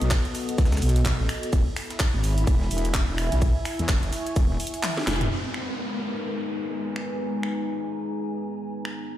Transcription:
Already playing: B3 F#4 A4 D#5
0.01 B1, closed hi-hat
0.11 kick, snare, clap, closed hi-hat, ride, shaker
0.25 closed hi-hat
0.35 snare, open hi-hat, shaker
0.49 closed hi-hat
0.58 C#2, kick, snare, closed hi-hat, ride, shaker
0.65 snare, shaker
0.72 snare, shaker
0.77 snare, shaker
0.82 B1, open hi-hat, shaker
0.89 closed hi-hat
0.96 closed hi-hat
1.05 kick, snare, clap, closed hi-hat, ride, shaker
1.20 A1
1.29 finger snap, open hi-hat, shaker
1.43 closed hi-hat
1.53 E1 E4 E5 G#5 B5, kick, closed hi-hat, ride, shaker
1.77 finger snap, open hi-hat, shaker
1.90 snare, closed hi-hat
2.00 kick, snare, clap, closed hi-hat, ride, shaker
2.14 G#1
2.24 open hi-hat, shaker
2.38 closed hi-hat
2.47 E1, kick, closed hi-hat, ride, shaker
2.61 snare
2.71 E1, open hi-hat, shaker
2.78 closed hi-hat
2.85 closed hi-hat
2.94 kick, snare, clap, closed hi-hat, ride, shaker
3.08 E1
3.18 finger snap, open hi-hat, shaker
3.32 B1, closed hi-hat
3.42 C#6, kick, closed hi-hat, ride, shaker
3.65 finger snap, open hi-hat, shaker
3.79 E2, closed hi-hat
3.89 F#1, kick, snare, clap, closed hi-hat, ride, shaker
4.03 closed hi-hat
4.13 snare, open hi-hat, shaker
4.27 closed hi-hat
4.36 E1, kick, closed hi-hat, ride, shaker
4.60 open hi-hat, shaker
4.67 closed hi-hat
4.74 closed hi-hat
4.83 snare, clap, closed hi-hat, high tom, ride, shaker
4.97 snare
5.07 E1, finger snap, snare, open hi-hat, shaker
5.21 closed hi-hat, mid tom
5.31 G#3 D#4 A#4 B4, downlifter
5.40 B3
5.54 finger snap
5.66 A#5
5.99 G#5
6.96 finger snap
7.20 G#4
7.43 finger snap
8.85 finger snap
9.09 A#2 A#3 C#4 C#5 E5

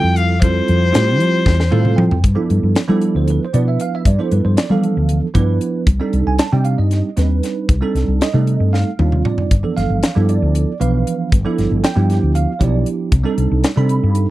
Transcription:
Already playing: G3 C4 E4 F4 A4 G5
0.03 F2
0.16 F5, closed hi-hat
0.41 G3 C4 E4 F4 A4 C5, kick, closed hi-hat
0.68 F2, closed hi-hat
0.92 A2 G3 C4 E4 F4 G4, snare, closed hi-hat
1.20 F3, closed hi-hat
1.46 E2, kick, snare
1.60 snare
1.70 A2 G3 C4 E4 F4 A4 F5, high tom
1.85 mid tom
1.96 F3 G5, mid tom
2.11 F2, floor tom
2.24 G2, kick, closed hi-hat
2.35 F3 B3 D4 E4 A4
2.50 G2, closed hi-hat
2.63 G2
2.75 snare, closed hi-hat
2.88 F3 G3 B3 D4 E4 A4
3.01 closed hi-hat
3.15 D2 C5
3.28 B4, closed hi-hat
3.44 C5
3.53 B2 F3 B3 D4 E4 B4 D5, closed hi-hat
3.68 E5
3.80 F5, closed hi-hat
3.95 E5
4.05 G2 D5, kick, closed hi-hat
4.19 F3 B3 D4 E4 A4 C5
4.31 G2 B4, closed hi-hat
4.45 G2 C5
4.57 D5, snare, closed hi-hat
4.70 E3 F3 G3 B3 D4 A4 F5
4.83 closed hi-hat
4.97 D2
5.09 closed hi-hat
5.34 G2 F3 B3 D4 E4 B4, kick, closed hi-hat
5.61 closed hi-hat
5.87 C2, kick, closed hi-hat
6.00 G3 C4 D4 D#4 A4
6.13 C2, closed hi-hat
6.26 C2 G#5
6.39 A5, snare, closed hi-hat
6.52 C3 G3 C4 D4 D#4 G4 G5
6.64 F5, closed hi-hat
6.78 G2 D#5
6.91 snare, closed hi-hat
7.17 D#2 G3 C4 D4 D#4 B4, snare, closed hi-hat
7.43 snare, closed hi-hat
7.69 C2, kick, closed hi-hat
7.81 G3 C4 D4 D#4 A4
7.95 C2, snare, closed hi-hat
8.08 C2
8.21 D#5, snare, closed hi-hat
8.33 C3 G3 A3 C4 D#4 A4
8.47 closed hi-hat
8.60 G2
8.73 F5, snare
8.99 D#2 G3 C4 D4 D#4 F4, high tom
9.12 mid tom
9.25 D5, mid tom
9.38 floor tom
9.51 G1, kick, closed hi-hat
9.63 E3 F3 B3 D4 A4
9.77 G1 F5, snare, closed hi-hat
9.90 G1
10.03 snare, closed hi-hat
10.15 G2 F3 B3 D4 E4 A4
10.29 D5, closed hi-hat
10.42 D2
10.55 closed hi-hat
10.80 B1 E3 F3 B3 D4 B4 F5, closed hi-hat
11.07 closed hi-hat
11.32 G1, kick, closed hi-hat
11.44 F3 B3 D4 E4 A4
11.58 G1, snare, closed hi-hat
11.71 G1
11.84 G5, snare, closed hi-hat
11.95 G2 F3 B3 D4 E4 G4
12.10 snare, closed hi-hat
12.23 D2
12.35 F5, closed hi-hat
12.59 B1 F3 B3 D4 E4 G4 C#5, kick, closed hi-hat
12.64 D5
12.86 closed hi-hat
13.12 C2, kick, closed hi-hat
13.23 G3 C4 D4 D#4 A4
13.38 C2, closed hi-hat
13.51 C2
13.64 snare, closed hi-hat
13.76 C3 G3 C4 D4 D#4 A4 B5
13.89 closed hi-hat
14.03 G2
14.15 closed hi-hat

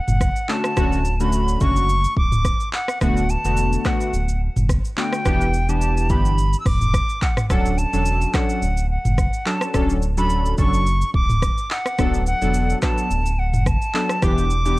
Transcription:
Already playing: F#5
0.08 F#1, mid tom, shaker
0.21 kick, cross-stick, shaker
0.36 shaker
0.49 D3 A3 C#4 F#4 A5, clap
0.64 cross-stick, shaker
0.77 D1 D3 A3 C#4 F#4, kick, cross-stick, shaker
0.92 shaker
1.05 shaker
1.20 D3 A3 C#4 F#4 B5, shaker
1.33 shaker
1.48 shaker
1.61 F#1 D3 A3 C#4 F#4 C#6, kick, shaker
1.76 shaker
1.89 shaker
2.04 shaker
2.17 D1 D6, kick
2.32 mid tom, shaker
2.45 kick, cross-stick, shaker
2.60 shaker
2.73 F#5, clap
2.88 cross-stick, shaker
3.01 D1 D3 A3 B3 F#4 F#5, kick, cross-stick, shaker
3.17 shaker
3.29 A5, shaker
3.45 E1 D3 A3 B3 F#4, shaker
3.57 shaker
3.73 shaker
3.85 D3 A3 B3 F#4 F#5, kick, cross-stick, clap, shaker
4.01 shaker
4.14 D1, shaker
4.29 shaker
4.56 F#1, mid tom, shaker
4.69 kick, cross-stick, shaker
4.85 shaker
4.97 D3 A3 B3 F#4 G5, clap
5.13 cross-stick, shaker
5.25 E1 E3 B3 D4 G4, kick, cross-stick, shaker
5.41 shaker
5.54 shaker
5.69 E3 B3 D4 G4 A5, shaker
5.81 shaker
5.97 shaker
6.09 G1 E3 B3 D4 G4 B5, kick, shaker
6.25 shaker
6.38 shaker
6.53 shaker
6.60 E6
6.65 E1 D6, kick, cross-stick, mid tom, open hi-hat, shaker
6.81 mid tom, shaker
6.94 kick, cross-stick, shaker
7.09 shaker
7.22 F#5, kick, clap, shaker
7.37 cross-stick, mid tom, shaker
7.50 D1 F#3 C#4 D4 A4 F#5, kick, cross-stick, shaker
7.65 shaker
7.78 A5, shaker
7.93 E1 F#3 C#4 D4 A4, shaker
8.05 shaker
8.21 shaker
8.34 F#3 C#4 D4 A4 F#5, kick, cross-stick, clap, shaker
8.49 shaker
8.62 D1, shaker
8.77 shaker
8.90 F#5
9.05 F#1, mid tom, shaker
9.18 kick, cross-stick, shaker
9.33 shaker
9.46 F#3 C#4 D4 A4 A5, clap
9.61 cross-stick, shaker
9.74 D1 F#3 C#4 D4 A4, kick, cross-stick, shaker
9.90 shaker
10.02 shaker
10.17 F#3 C#4 D4 A4 B5, shaker
10.30 shaker
10.46 shaker
10.58 F#1 F#3 C#4 D4 A4 C#6, kick, shaker
10.74 shaker
10.87 shaker
11.02 shaker
11.14 D1 D6, kick
11.29 mid tom, shaker
11.42 kick, cross-stick, shaker
11.58 shaker
11.70 F#5, clap
11.85 cross-stick, shaker
11.98 D1 F#3 B3 D4 A4, kick, cross-stick, shaker
12.14 shaker
12.26 F#5, shaker
12.42 E1 F#3 B3 D4 A4, shaker
12.54 shaker
12.70 shaker
12.82 F#3 B3 D4 A4 A5, kick, cross-stick, clap, shaker
12.98 shaker
13.11 D1, shaker
13.26 shaker
13.39 F#5
13.54 F#1, mid tom, shaker
13.66 A5, kick, cross-stick, shaker
13.82 shaker
13.94 F#3 B3 D4 A4, clap
14.10 cross-stick, shaker
14.22 E1 E3 B3 D4 G4 D6, kick, cross-stick, shaker
14.38 shaker
14.51 shaker
14.66 E3 B3 D4 G4, shaker

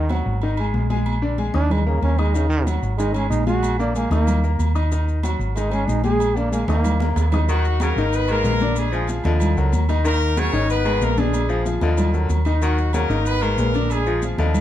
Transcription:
Already playing: D#2 D#3
0.09 F#3 F#4 F#5, high conga, low agogo
0.26 G#1, high conga
0.42 D#3 D#4 D#5, high conga, low agogo
0.57 G#3 G#4 G#5, high conga, low agogo
0.74 A#1, high conga, low timbale
0.90 G#3 G#4 G#5, high conga, low agogo
1.06 high conga, low agogo
1.22 D3 D4 D5, high conga
1.38 G#3 G#4 G#5, high conga, low agogo
1.54 D#2 D4 D#4 D#5 D#6, high conga, low agogo
1.70 G#3, high conga, low conga, low agogo
1.86 C#3 A#3 A#4 A#5, high conga
2.02 D#2 C#4, high conga, low timbale, low agogo
2.19 G#3 D#4 D#5 D#6, low agogo
2.34 C#3 D#3 D#4 D#5, low agogo, maracas
2.50 D#3, high conga, maracas
2.67 F#3 F#4 F#5, high conga, low agogo, maracas
2.82 G#1, high conga, maracas
2.98 D#3 G#3 D#4 D#5, high conga, low agogo, maracas
3.14 G#3 C#4 G#4 G#5, high conga, low agogo, maracas
3.30 A#1 D#4, high conga, maracas
3.47 G#3 F#4 G#4 G#5, high conga, low agogo, maracas
3.63 high conga, low agogo, maracas
3.79 D3 A#3 D4 D5, maracas
3.95 G#3 A#3 G#4 G#5, high conga, low agogo, maracas
4.10 D#2 A#3 D#4 D#5 D#6, high conga, low agogo, maracas
4.27 high conga, low conga, low agogo, maracas
4.44 A#3 A#4 A#5, high conga, maracas
4.59 D#2, high conga, low agogo, maracas
4.75 D#4 D#5 D#6, low agogo, maracas
4.92 D#3 D#4 D#5, high conga, low agogo, maracas
5.08 high conga, maracas
5.23 F#3 F#4 F#5, high conga, low agogo, maracas
5.39 G#1, high conga, maracas
5.55 D#3 G#3 D#4 D#5, high conga, low agogo, maracas
5.72 G#3 C#4 G#4 G#5, high conga, low agogo, maracas
5.88 A#1 D#4, high conga, maracas
6.04 G#3 G#4 G#5, high conga, low agogo, maracas
6.20 high conga, low agogo, maracas
6.36 D3 A#3 D4 D5, high conga, maracas
6.52 G#3 A#3 G#4 G#5, high conga, low agogo, maracas
6.68 D#2 A#3 D#4 D#5 D#6, high conga, high timbale, low agogo, maracas
6.84 high conga, low conga, high timbale, low agogo, maracas
7.00 A#3 A#4 A#5, high conga, low timbale, maracas
7.16 D#2, low timbale, low agogo, maracas
7.32 D#4 D#5 D#6, low conga, low timbale, low agogo, maracas
7.48 D#3 F#3 D#4 F#4 D#5, high conga, low agogo, maracas
7.65 high conga, maracas
7.80 C#3 F#3 A#3 F#4 A#4, high conga, low agogo, maracas
7.96 G#1 D#3 D#4 D#5, high conga, maracas
8.12 B3 B4, high conga, low agogo, maracas
8.28 D#3 G#3 A#3 G#4 A#4 B4, high conga, low agogo, maracas
8.44 A#1 G#3 G#4 B4, high conga, low timbale, maracas
8.60 D3 D4 D5, high conga, low agogo, maracas
8.76 G#3 G#4, high conga, low agogo, maracas
8.92 F3 F4 G#4, high conga, maracas
9.07 F3 F4 G#4, high conga, low agogo, maracas
9.24 D#2 D3 F3 F4 D#5, high conga, low agogo, maracas
9.40 high conga, low conga, low agogo, maracas
9.56 C#2 F#3 F#4 A#4, high conga, maracas
9.72 D#2, high conga, low agogo, maracas
9.89 D#3 D#4 D#5, low agogo, maracas
10.04 D#3 A#3 D#4 A#4 D#5, low agogo, maracas
10.21 maracas
10.37 C#3 F#3 C#4 F#4 A#4 C#5, high conga, low agogo, maracas
10.53 G#1 D#3 D#4 D#5, high conga, maracas
10.70 B3 B4, high conga, low agogo, maracas
10.85 D#3 G#3 G#4 B4, high conga, low agogo, maracas
11.01 A#1 G#3 A#3 G#4 A#4 B4, high conga, low timbale, maracas
11.17 D3 G#3 D4 G#4 D5, high conga, low agogo, maracas
11.34 high conga, low agogo, maracas
11.48 F3 F4 G#4, high conga, maracas
11.66 F3 F4 G#4, high conga, low agogo, maracas
11.81 D#2 D3 F3 F4 D#5, high conga, low agogo, maracas
11.97 high conga, low conga, low agogo, maracas
12.14 F#3 F#4 A#4, high conga, maracas
12.29 D#2, high conga, low agogo, maracas
12.45 D#3 D#4 D#5, low agogo, maracas
12.61 D#3 F#3 D#4 F#4 D#5, high conga, low agogo, maracas
12.78 high conga, maracas
12.93 C#3 F#3 A#3 F#4 A#4, high conga, low agogo, maracas
13.09 G#1 D#3 D#4 D#5, high conga, maracas
13.25 B3 B4, high conga, low agogo, maracas
13.41 D#3 G#3 A#3 G#4 A#4 B4, high conga, low agogo, maracas
13.58 A#1 G#3 G#4 B4, high conga, low timbale, maracas
13.74 D3 D4 D5, high conga, low agogo, maracas
13.90 G#3 G#4, high conga, low agogo, maracas
14.06 F3 F4 G#4, high conga, maracas
14.22 F3 F4 G#4, high conga, low agogo, maracas
14.38 D#2 D3 F3 F4 D#5, high conga, low agogo, maracas
14.54 high conga, low conga, low agogo, maracas

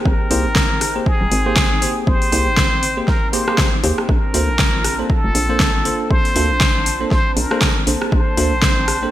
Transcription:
Already playing: A#3 C4 D#4 G4 G#4 C5 G5
0.06 G#1 A#4 C5, kick
0.30 C2 A#3 G4 G#4 C5, open hi-hat
0.45 G#1
0.56 kick, snare
0.81 cross-stick, open hi-hat
0.95 A#3 G4 G#4 C5
1.06 G#4, kick
1.21 D#1
1.32 G#1, open hi-hat
1.46 A#3 G4 G#4 C5
1.56 kick, snare
1.82 A#3 G4 G#4 C5, open hi-hat
2.07 G#1 C5, kick
2.22 open hi-hat
2.32 C2 A#3 G4 G#4 C5, open hi-hat
2.47 G#1
2.57 kick, snare
2.83 open hi-hat
2.97 A#3 G4 G#4 C5
3.08 A#4, kick, snare
3.33 A#3 G4 G#4 C5, open hi-hat
3.48 A#3 G4 G#4 C5, cross-stick
3.58 kick, snare
3.83 D#2 A#3 G4 G#4 C5, open hi-hat
3.98 cross-stick
4.09 A#1 D4 F4 A#4 A5, kick
4.34 D2 A#3 D4 A4 C5, open hi-hat
4.49 A#1
4.59 kick, snare
4.84 cross-stick, open hi-hat
4.99 A#3 D4 A4 C5
5.10 A4, kick
5.24 F1
5.35 A#1, open hi-hat
5.49 A#3 D4 A4 C5
5.60 kick, snare
5.85 A#3 D4 A4 C5, open hi-hat
6.11 A#1 C5, kick
6.25 open hi-hat
6.35 D2 A#3 D4 A4 C5, open hi-hat
6.50 A#1
6.61 kick, snare
6.86 open hi-hat
7.00 A#3 D4 A4 C5
7.11 A#1 C5, kick, snare
7.37 A#1 A#4, open hi-hat
7.51 A#3 D4 A4 C5, cross-stick
7.61 kick, snare
7.87 A#1 A#3 D4 A4 C5, open hi-hat
8.02 cross-stick
8.12 A#1 C5 G5, kick
8.37 D2 A#3 D4 A4 C5, open hi-hat
8.52 A#1
8.62 kick, snare
8.88 cross-stick, open hi-hat
9.02 A#3 D4 A4 C5

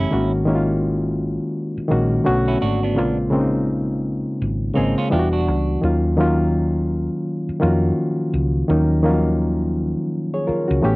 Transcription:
Already playing: E3 A3 B3 C#4 E4 G4
0.00 C#4
0.10 G#1 D#3 G#3 A#3 C#4 F#4
0.45 D#3 G#3 A#3 C#4 E4
0.55 F4
1.77 muted fingered electric bass stroke
1.88 A#1 D#3 G#3 A#3 C#4 F#4
2.24 B1 D3 A3 B3 C#4 F#4
2.48 C#4 E4
2.62 G#1 D4 F#4
2.83 B3 D4
2.95 A#1 C#3 G#3 A#3 C4 F4
3.30 C#3 G#3 A#3 C4 C#4
3.40 D#4
4.42 G#1
4.74 G#1 C#3 G#3 A#3 C4 D#4 G#4
4.98 C#4 F4
5.10 E1 E3 G3 B3 D4 E4 F4 G4
5.19 F#4
5.33 D4 F#4
5.48 C#2
5.82 D#2 D#3 F#3 A#3 C#4 F4
6.17 D#3 F#3 A#3 C#4 F4
7.49 muted fingered electric bass stroke
7.60 F2 D#3 F3 A#3 C#4 F4
7.67 F#4
8.33 C#2
8.68 D#2 D#3 F#3 A#3 C#4 D#4
9.02 D#3 F3 A#3 C#4 F4
9.10 F#3
10.34 G#4 C#5
10.47 F4 A#4, muted fingered electric bass stroke
10.68 C#2 C#4 F#4
10.81 A1 E3 A3 B3 C#4 G4

